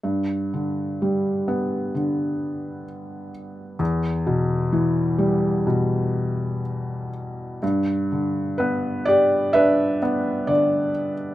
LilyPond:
<<
  \new Staff \with { instrumentName = "Felt piano" } { \time 4/4 \key g \major \tempo 4 = 64 << { r1 | r1 | r4 b'8 d''8 e''4 d''8. r16 | } \\ { r1 | r1 | r2 b'2 | } >> }
  \new Staff \with { instrumentName = "Felt piano" } { \clef bass \time 4/4 \key g \major g,8 d8 g8 b8 d2 | e,8 b,8 e8 g8 b,2 | g,8 d8 b8 g'8 d'8 b8 d4 | }
>>